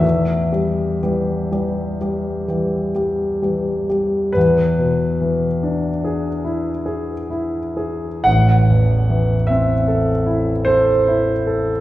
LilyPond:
\new Staff \with { instrumentName = "Grand piano" } { \time 9/8 \key e \minor \tempo 4. = 46 << { e''1 r8 | b'1~ b'8 | fis''4. e''4. c''4. | } \\ { e,8 <g g'>8 <e g g'>8 <e g g'>8 <g g'>8 <e g g'>8 <g g'>8 <e g g'>8 <g g'>8 | e,8 b,8 e8 d'8 gis'8 e'8 gis'8 e'8 gis'8 | a,,8 e,8 e8 c'8 a'8 e'8 a'8 e'8 a'8 | } >> }